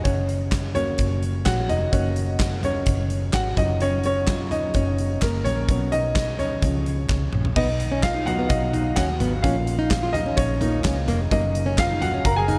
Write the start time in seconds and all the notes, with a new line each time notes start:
0.04 F#1 C#4 C#5, kick, closed hi-hat
0.29 closed hi-hat
0.52 kick, snare, clap, closed hi-hat
0.75 A#3 C#4 F#4 C#5, closed hi-hat, floor tom
0.98 F#1, kick, closed hi-hat
1.23 closed hi-hat
1.45 A#1 F#4 F#5, kick, snare, clap, closed hi-hat
1.69 F1 D#4 D#5, closed hi-hat, floor tom
1.93 F#1 A#3 C#4 F#4 C#5, kick, closed hi-hat
2.16 closed hi-hat
2.39 kick, snare, clap, closed hi-hat
2.63 C#4 C#5, closed hi-hat, floor tom
2.86 F#1, kick, closed hi-hat
3.10 closed hi-hat
3.33 G#1 F#4 F#5, kick, snare, clap, closed hi-hat
3.57 F#1 F#3 C#4 D#4 F4 D#5, kick, closed hi-hat, floor tom
3.80 C#4 C#5, closed hi-hat
4.04 C#4 C#5, closed hi-hat
4.27 F#3 F4, kick, snare, clap, closed hi-hat
4.51 D#4 D#5, closed hi-hat, floor tom
4.74 F#1 C#4 C#5, kick, closed hi-hat
4.98 closed hi-hat
5.22 F#1 A#3 A#4, kick, snare, clap, closed hi-hat
5.44 A#1 C#4 C#5, closed hi-hat, floor tom
5.69 B1 F#3 B3 C#4, kick, closed hi-hat
5.92 D#4 D#5, closed hi-hat
6.16 kick, snare, clap, closed hi-hat
6.39 C#4 C#5, closed hi-hat, floor tom
6.62 C#2 F3 G#3 C#4, kick, closed hi-hat
6.86 closed hi-hat
7.09 C#2, kick, snare, clap
7.32 A#1, mid tom
7.45 floor tom
7.56 B1 B3 D#4 D#5, kick, crash
7.80 closed hi-hat
7.92 C#4
8.03 F4 F5, kick, snare, clap, closed hi-hat
8.15 D#4
8.26 F#3 B3 D#4 F#4 F#5, closed hi-hat, floor tom
8.39 B3
8.49 B1 D#4 D#5, kick, closed hi-hat
8.73 D#4, closed hi-hat, floor tom
8.96 D#2 C#4 F#4 F#5, kick, snare, clap, closed hi-hat
9.20 G#1 B3, closed hi-hat, floor tom
9.42 A#1 F3 A#3 C#4 F4 F5, kick, closed hi-hat
9.67 closed hi-hat
9.79 D#4
9.90 kick, snare, clap, closed hi-hat
10.03 F4
10.13 D#4 D#5, closed hi-hat, floor tom
10.26 C#4
10.37 A#1 C#4 C#5, kick, closed hi-hat
10.61 F3 A#3 C#4 D#4, closed hi-hat, floor tom
10.84 C#2 C#4, kick, snare, clap, closed hi-hat
11.08 F1 A#3, snare, closed hi-hat, floor tom
11.31 F#1 F#3 A#3 C#4 D#4 D#5, kick, closed hi-hat
11.55 closed hi-hat
11.66 C#4
11.78 F4 F5, kick, snare, clap, closed hi-hat
11.90 D#4
12.01 F#4 F#5, closed hi-hat, floor tom
12.14 C#4
12.25 F#1 A#4 A#5, kick, closed hi-hat
12.36 G#4 G#5
12.48 D#4, closed hi-hat, floor tom